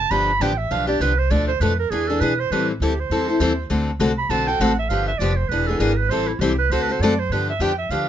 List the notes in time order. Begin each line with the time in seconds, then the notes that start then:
Already playing: A5
0.10 G1 D3 F3 B3 D4 G4 B5
0.40 A1 D3 F3 B3 D4 G4 G5
0.58 E5
0.71 B1 D3 F3 B3 D4 G4 F5
0.87 B3 D4 G4 D5
1.00 C2 D3 F3 B3 D4 G4 B4
1.19 C5
1.30 D2 B2 F3 A3 D4 A4 D5
1.48 C5
1.60 F2 B2 F3 A3 D4 A4 B4
1.79 A#4
1.90 E2 E3 B3 D4 G#4
2.08 B3 D4 G#4 A4
2.20 B2 E3 B3 D4 G#4 B4
2.40 C5
2.50 A2 E3 G3 C4 E4 A4 B4
2.70 E4
2.80 D2 E3 G3 C4 E4 G4 A4
3.00 C5
3.10 E2 E3 G3 C4 E4 A4
3.28 C4 E4 A4
3.40 D#2 E3 G3 C4 E4 A4
3.70 D2 D3 A3 C4 F#4 A4
3.99 C2 D3 A3 C4 F#4 A4
4.18 B5
4.29 B1 D3 A3 C4 F#4 A4 A5
4.47 C4 F#4 A4 G5
4.60 A1 D3 A3 C4 F#4 A4 F#5
4.79 E5
4.89 G1 D3 F3 B3 D4 G4 F5
5.08 E5
5.18 F1 D3 F3 B3 D4 G4 D5
5.37 C5
5.48 E1 E3 B3 D4 G#4 B4
5.67 B3 D4 G#4 A4
5.79 G#1 E3 B3 D4 G#4 A#4
5.97 B4
6.09 A1 E3 G3 C4 E4 A4 C5
6.28 E4
6.39 C2 E3 G3 C4 E4 G4 A4
6.58 B4
6.70 D2 D3 A3 C4 F#4 A4 C5
6.82 B4
6.89 C4 F#4 A4 C5
6.99 F#2 D3 A3 C4 F#4 D5
7.04 A4
7.20 C5
7.29 G2 D3 F3 B3 D4 G4 B4
7.49 E5
7.59 F2 D3 F3 B3 D4 G4 G5
7.78 E5
7.89 D2 D3 F3 B3 D4 G4 F5